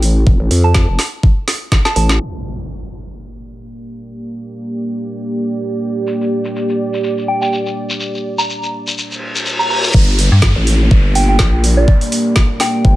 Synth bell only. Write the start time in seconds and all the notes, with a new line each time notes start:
0.64 A5
1.85 A5
1.96 A5
7.28 G5
7.42 G5
8.38 A#5
9.59 A#5
9.70 A#5
11.15 G5
11.29 G5
11.77 D5
12.60 G5